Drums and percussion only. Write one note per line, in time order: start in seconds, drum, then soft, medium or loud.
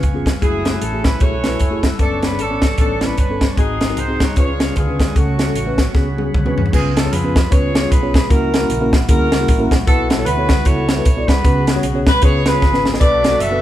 0.03 kick medium
0.03 closed hi-hat medium
0.26 kick medium
0.26 snare loud
0.26 closed hi-hat medium
0.42 kick medium
0.42 closed hi-hat medium
0.65 snare loud
0.65 closed hi-hat medium
0.82 closed hi-hat loud
1.04 kick medium
1.04 snare loud
1.04 closed hi-hat medium
1.20 kick loud
1.20 closed hi-hat medium
1.44 snare loud
1.44 closed hi-hat medium
1.60 kick medium
1.60 closed hi-hat medium
1.83 kick medium
1.83 snare loud
1.83 closed hi-hat medium
1.99 kick loud
1.99 closed hi-hat medium
2.22 snare loud
2.22 closed hi-hat medium
2.39 closed hi-hat loud
2.62 kick medium
2.62 snare loud
2.62 closed hi-hat medium
2.78 kick loud
2.78 closed hi-hat medium
3.01 snare loud
3.01 closed hi-hat medium
3.18 kick medium
3.18 closed hi-hat medium
3.41 kick medium
3.41 snare loud
3.41 closed hi-hat medium
3.57 kick loud
3.57 closed hi-hat medium
3.81 snare loud
3.81 closed hi-hat medium
3.97 closed hi-hat loud
4.20 kick medium
4.20 snare loud
4.20 closed hi-hat medium
4.36 kick loud
4.36 closed hi-hat medium
4.60 snare loud
4.60 closed hi-hat medium
4.76 kick medium
4.76 closed hi-hat medium
5.00 kick medium
5.00 snare loud
5.00 closed hi-hat medium
5.16 kick loud
5.16 closed hi-hat medium
5.39 snare loud
5.39 closed hi-hat medium
5.55 closed hi-hat loud
5.78 kick medium
5.78 snare loud
5.78 closed hi-hat medium
5.95 kick loud
5.95 snare soft
6.18 high tom medium
6.34 kick loud
6.34 mid tom medium
6.46 mid tom medium
6.58 floor tom medium
6.66 floor tom medium
6.73 kick loud
6.73 crash loud
6.97 snare loud
6.97 closed hi-hat medium
7.13 closed hi-hat loud
7.36 kick loud
7.36 snare loud
7.36 closed hi-hat medium
7.52 kick loud
7.52 closed hi-hat medium
7.75 snare loud
7.75 closed hi-hat medium
7.92 kick loud
7.92 closed hi-hat medium
8.14 kick medium
8.14 snare loud
8.14 closed hi-hat medium
8.30 kick loud
8.30 closed hi-hat medium
8.54 snare loud
8.54 closed hi-hat medium
8.70 closed hi-hat loud
8.93 kick loud
8.93 snare loud
8.93 closed hi-hat medium
9.09 kick loud
9.09 closed hi-hat medium
9.32 snare loud
9.32 closed hi-hat medium
9.48 kick loud
9.48 closed hi-hat medium
9.71 kick medium
9.71 snare loud
9.71 closed hi-hat medium
9.87 kick loud
9.87 closed hi-hat medium
10.10 snare loud
10.10 closed hi-hat medium
10.26 closed hi-hat loud
10.49 kick loud
10.49 snare loud
10.49 closed hi-hat medium
10.65 kick loud
10.65 closed hi-hat medium
10.89 snare loud
10.89 closed hi-hat medium
11.05 kick loud
11.05 closed hi-hat medium
11.28 kick medium
11.28 snare loud
11.28 closed hi-hat medium
11.45 kick loud
11.45 closed hi-hat medium
11.67 snare loud
11.67 closed hi-hat medium
11.83 closed hi-hat loud
12.07 kick loud
12.07 snare loud
12.07 closed hi-hat medium
12.22 kick loud
12.22 closed hi-hat medium
12.46 snare loud
12.46 closed hi-hat medium
12.62 kick loud
12.62 snare medium
12.74 snare medium
12.86 snare loud
12.94 snare medium
13.01 kick loud
13.01 closed hi-hat medium
13.24 snare loud
13.24 closed hi-hat medium
13.40 closed hi-hat loud